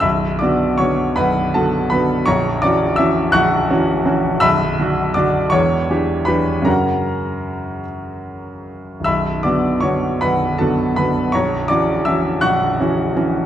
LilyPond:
<<
  \new Staff \with { instrumentName = "Grand piano" } { \time 6/8 \key b \minor \tempo 4. = 54 <e'' b'' e'''>8 <d'' d'''>8 <cis'' cis'''>8 <b' fis'' b''>8 <a' a''>8 <b' b''>8 | <cis'' ais'' cis'''>8 <d'' d'''>8 <e'' e'''>8 <fis'' cis''' fis'''>4. | <e'' b'' e'''>4 <d'' d'''>8 <cis'' cis'''>4 <b' b''>8 | <ais' fis'' ais''>4. r4. |
<e'' b'' e'''>8 <d'' d'''>8 <cis'' cis'''>8 <b' fis'' b''>8 <a' a''>8 <b' b''>8 | <cis'' ais'' cis'''>8 <d'' d'''>8 <e'' e'''>8 <fis'' cis''' fis'''>4. | }
  \new Staff \with { instrumentName = "Grand piano" } { \clef bass \time 6/8 \key b \minor <b,,, b,,>8 <d b fis'>8 <d b fis'>8 <b,,, b,,>8 <d b fis'>8 <d b fis'>8 | <ais,,, ais,,>8 <e cis' fis'>8 <e cis' fis'>8 <ais,,, ais,,>8 <e cis' fis'>8 <e cis' fis'>8 | <b,,, b,,>8 <d d' fis'>8 <d d' fis'>8 <e,, e,>8 <e d' g'>8 <e d' g'>8 | <fis, cis cis' fis'>2. |
<b,,, b,,>8 <d b fis'>8 <d b fis'>8 <b,,, b,,>8 <d b fis'>8 <d b fis'>8 | <ais,,, ais,,>8 <e cis' fis'>8 <e cis' fis'>8 <ais,,, ais,,>8 <e cis' fis'>8 <e cis' fis'>8 | }
>>